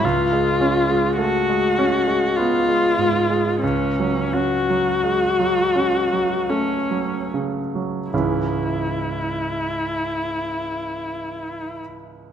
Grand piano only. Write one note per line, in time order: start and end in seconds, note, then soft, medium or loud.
0.04 3.58 C#2 soft
0.33 0.77 G#3 soft
0.61 1.06 C#4 soft
0.89 1.35 G#3 soft
1.18 1.47 A3 soft
1.49 1.96 G#3 soft
1.78 2.25 C#4 soft
2.07 2.54 G#3 soft
2.38 2.85 B3 soft
2.69 3.16 G#3 soft
2.98 3.49 G#2 soft
3.30 3.63 G#3 soft
3.63 8.08 C#2 soft
4.00 4.55 F#3 soft
4.34 4.90 C#4 soft
4.70 5.25 F#3 soft
5.04 5.38 G#3 soft
5.39 5.96 F#3 soft
5.75 6.34 C#4 soft
6.13 6.74 F#3 soft
6.50 7.15 A3 soft
6.91 7.58 F#3 soft
7.34 7.98 C#3 soft
7.75 8.12 F#3 soft
8.13 11.80 C#2 soft
8.13 11.80 G#2 soft
8.13 11.80 E3 soft
8.13 11.80 G#3 soft
8.13 11.80 C#4 soft
8.13 11.80 E4 soft